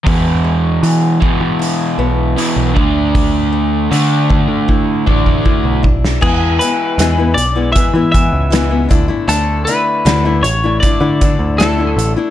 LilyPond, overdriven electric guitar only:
\new Staff \with { instrumentName = "Overdriven electric guitar" } { \clef bass \time 4/4 \key e \mixolydian \tempo 4 = 78 <e, b, e>4. <e, b, e>4. <e, b, e>8 <d a d'>8~ | <d a d'>4 <d a d'>4. <d a d'>4 r8 | r1 | r1 | }